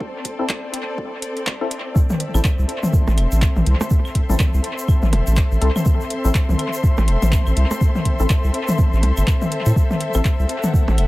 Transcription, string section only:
0.00 1.94 C4 medium
0.00 1.96 A4 medium
0.00 3.60 D5 medium
0.00 1.96 C6 medium
1.96 11.07 C4 medium
2.16 11.07 A4 medium
2.16 11.07 E5 medium
2.76 10.60 C6 medium
10.57 11.07 F#5 medium

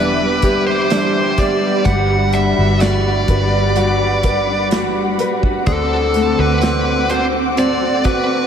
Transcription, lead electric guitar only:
0.00 0.63 B4 medium
0.67 1.40 C5 medium
1.39 1.83 D5 medium
1.85 2.35 F#5 medium
2.34 2.78 E5 medium
2.81 4.68 D5 medium
5.67 6.40 A4 medium
6.40 7.10 B4 medium
7.11 7.24 C5 medium
7.59 8.02 D5 medium
8.06 8.47 B4 medium

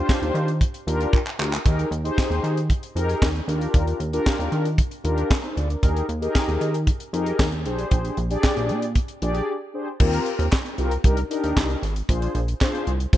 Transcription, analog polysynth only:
0.00 0.50 D4 loud
0.00 0.50 F4 loud
0.00 0.50 G4 loud
0.00 0.50 C5 loud
0.87 1.18 D4 loud
0.87 1.18 F4 medium
0.87 1.18 G4 medium
0.87 1.19 A#4 loud
1.39 1.53 D4 medium
1.39 1.53 F4 medium
1.39 1.53 G4 medium
1.39 1.54 A#4 loud
1.65 1.88 D#4 medium
1.65 1.89 G4 medium
1.65 1.89 G#4 medium
1.65 1.89 A#4 loud
2.04 2.59 D#4 loud
2.04 2.59 G4 medium
2.04 2.59 G#4 medium
2.04 2.59 C5 loud
2.95 3.27 D#4 loud
2.95 3.27 G4 medium
2.95 3.27 G#4 medium
2.95 3.27 A#4 loud
3.47 4.00 D4 medium
3.47 4.00 F4 medium
3.47 4.00 G4 medium
3.47 4.00 A#4 medium
4.13 4.68 D4 loud
4.13 4.68 F4 medium
4.13 4.68 G4 loud
4.13 4.68 A#4 loud
5.04 5.30 D4 loud
5.04 5.30 F4 medium
5.04 5.31 G4 medium
5.04 5.29 A#4 loud
5.31 5.43 D4 medium
5.31 5.43 A#4 medium
5.44 5.56 D#4 medium
5.44 5.56 C5 medium
5.57 5.69 F4 medium
5.57 5.69 D5 medium
5.69 5.95 D4 soft
5.69 5.82 A#4 medium
5.82 6.06 D#4 medium
5.82 6.06 G4 medium
5.82 6.06 G#4 medium
5.82 6.06 A#4 loud
6.21 6.76 D#4 loud
6.21 6.76 G4 medium
6.21 6.76 G#4 medium
6.21 6.77 A#4 loud
7.13 7.44 D#4 loud
7.13 7.44 G4 medium
7.13 7.44 G#4 medium
7.13 7.45 A#4 loud
7.65 8.17 D4 medium
7.65 8.18 G4 medium
7.65 8.18 G#4 medium
7.65 8.18 C5 loud
8.30 8.85 D4 loud
8.30 8.85 G4 medium
8.30 8.85 G#4 loud
8.30 8.85 D5 loud
9.22 9.53 D4 loud
9.22 9.53 G4 medium
9.22 9.53 G#4 medium
9.22 9.53 D5 loud
9.74 9.88 D4 medium
9.74 9.88 G4 medium
9.74 9.88 G#4 medium
9.74 9.89 C5 medium
10.00 10.47 C4 medium
10.00 10.47 F4 medium
10.00 10.47 G4 medium
10.00 10.47 A#4 loud
10.78 10.92 C4 medium
10.78 10.92 F4 medium
10.78 10.92 G4 medium
10.78 10.93 A#4 loud
11.04 11.18 D4 medium
11.04 11.19 D#4 medium
11.04 11.19 G4 medium
11.04 11.19 A#4 loud
11.30 11.77 D4 medium
11.30 11.77 D#4 loud
11.30 11.77 G4 medium
11.30 11.78 A#4 loud
12.08 12.40 D4 medium
12.08 12.40 F4 medium
12.08 12.40 G#4 medium
12.08 12.40 C5 medium
12.60 12.92 D4 medium
12.60 12.92 F4 medium
12.60 12.92 G#4 medium
12.60 12.92 C5 loud
13.13 13.17 D4 medium
13.13 13.17 F4 medium
13.13 13.17 G#4 medium
13.13 13.17 C5 loud

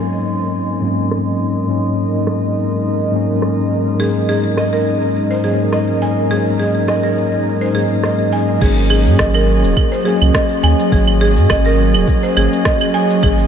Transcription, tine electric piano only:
0.00 0.79 G#2 medium
0.00 0.79 F#3 medium
0.00 0.80 A#3 medium
0.00 0.81 C#4 medium
0.81 1.65 G#2 medium
0.81 1.66 F#3 medium
0.81 1.66 A#3 medium
0.81 1.67 C#4 medium
1.67 3.09 G#2 medium
1.67 3.10 F#3 medium
1.67 3.10 A#3 medium
1.71 3.11 C#4 medium
3.12 3.96 G#2 medium
3.12 3.96 F#3 medium
3.12 3.97 A#3 medium
3.12 3.98 C#4 medium
3.98 5.40 G#2 medium
3.98 5.41 F#3 medium
3.98 5.42 A#3 medium
3.98 5.42 C#4 medium
5.43 6.27 G#2 medium
5.43 6.27 F#3 medium
5.43 6.28 A#3 medium
5.43 6.29 C#4 medium
6.29 7.71 G#2 medium
6.29 7.72 F#3 medium
6.29 7.72 A#3 medium
6.33 7.73 C#4 medium
7.73 8.57 G#2 medium
7.73 8.58 F#3 medium
7.73 8.59 A#3 medium
7.78 8.59 C#4 loud
8.60 10.02 F#3 medium
8.60 10.03 A#3 medium
8.60 10.04 C#4 loud
10.04 10.88 F#3 loud
10.04 10.89 A#3 medium
10.04 10.90 C#4 loud
10.90 12.32 F#3 medium
10.90 12.33 A#3 medium
10.94 12.34 C#4 loud
12.35 13.19 F#3 loud
12.35 13.20 A#3 medium
12.39 13.21 C#4 loud
13.21 13.47 F#3 loud
13.21 13.47 A#3 medium
13.26 13.47 C#4 loud

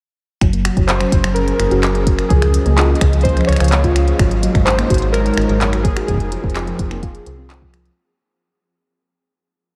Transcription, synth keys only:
0.87 1.37 C5 medium
1.34 2.32 A#4 medium
2.29 3.27 G#4 medium
3.23 3.48 C5 loud
3.47 3.92 C#5 loud
4.65 5.15 C5 loud
5.12 5.86 A#4 medium
5.83 6.06 G#4 medium
6.07 7.45 G#4 medium

